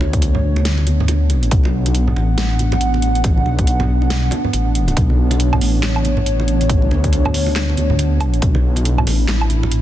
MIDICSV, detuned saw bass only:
0, 0, Header, 1, 2, 480
1, 0, Start_track
1, 0, Key_signature, 2, "minor"
1, 0, Tempo, 431655
1, 1685, Time_signature, 4, 2, 24, 8
1, 10918, End_track
2, 0, Start_track
2, 0, Title_t, "Detuned saw bass"
2, 0, Program_c, 0, 39
2, 5, Note_on_c, 0, 38, 98
2, 949, Note_off_c, 0, 38, 0
2, 965, Note_on_c, 0, 38, 98
2, 1669, Note_off_c, 0, 38, 0
2, 1685, Note_on_c, 0, 35, 100
2, 2389, Note_off_c, 0, 35, 0
2, 2405, Note_on_c, 0, 33, 93
2, 3830, Note_off_c, 0, 33, 0
2, 3846, Note_on_c, 0, 35, 97
2, 4790, Note_off_c, 0, 35, 0
2, 5045, Note_on_c, 0, 33, 91
2, 5509, Note_off_c, 0, 33, 0
2, 5524, Note_on_c, 0, 35, 100
2, 6229, Note_off_c, 0, 35, 0
2, 6245, Note_on_c, 0, 33, 97
2, 7669, Note_off_c, 0, 33, 0
2, 7685, Note_on_c, 0, 38, 99
2, 8629, Note_off_c, 0, 38, 0
2, 8645, Note_on_c, 0, 38, 95
2, 9349, Note_off_c, 0, 38, 0
2, 9365, Note_on_c, 0, 35, 100
2, 10069, Note_off_c, 0, 35, 0
2, 10085, Note_on_c, 0, 33, 100
2, 10918, Note_off_c, 0, 33, 0
2, 10918, End_track
0, 0, End_of_file